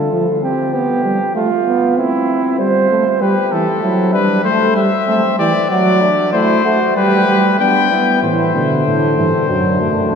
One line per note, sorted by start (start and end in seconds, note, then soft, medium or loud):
0.00 0.11 D3 medium
0.00 0.42 A4 medium
0.12 0.26 F3 medium
0.43 0.75 C4 medium
0.43 0.73 G4 medium
0.74 1.04 B3 medium
0.74 1.35 G4 medium
1.05 1.19 G3 medium
1.35 1.49 A3 medium
1.35 1.97 F4 medium
1.67 1.99 B3 medium
1.97 2.61 C4 medium
1.97 2.59 E4 medium
2.59 2.90 G3 medium
2.59 3.23 C5 medium
2.90 3.04 A3 medium
3.21 3.35 G3 medium
3.21 3.82 G4 medium
3.21 3.54 B4 medium
3.52 3.67 E3 medium
3.52 4.13 A4 medium
3.83 4.16 F#3 medium
3.83 4.15 E4 medium
4.13 4.45 G3 medium
4.13 4.44 D4 medium
4.13 4.44 B4 medium
4.44 4.84 A3 medium
4.44 4.75 A3 medium
4.44 4.75 C5 medium
4.76 4.90 G3 medium
4.76 5.38 E5 medium
5.07 5.22 A3 medium
5.07 5.36 C4 medium
5.39 5.53 E3 medium
5.39 5.53 G4 medium
5.39 5.70 D5 medium
5.70 6.10 F#3 medium
5.70 6.03 F#4 medium
5.70 6.32 D5 medium
6.01 6.33 D4 medium
6.33 6.63 A3 medium
6.33 6.64 E4 medium
6.33 6.95 C5 medium
6.65 6.79 A3 medium
6.65 6.96 F#4 medium
6.96 7.27 G3 medium
6.96 7.58 G4 medium
6.96 7.58 B4 medium
7.27 7.60 G3 medium
7.59 7.91 B3 medium
7.59 7.90 D4 medium
7.59 8.22 G5 medium
7.91 8.22 B3 medium
7.91 8.22 E4 medium
8.22 8.52 A2 medium
8.22 8.52 E3 medium
8.22 8.82 E4 medium
8.22 10.15 C5 medium
8.54 8.86 B2 medium
8.54 9.17 D3 medium
8.86 9.18 A2 medium
8.86 9.48 A4 medium
9.18 9.32 G2 medium
9.18 9.32 E3 medium
9.49 10.11 F#2 medium
9.49 9.80 F#3 medium
9.49 10.15 D4 medium
9.82 10.15 A3 medium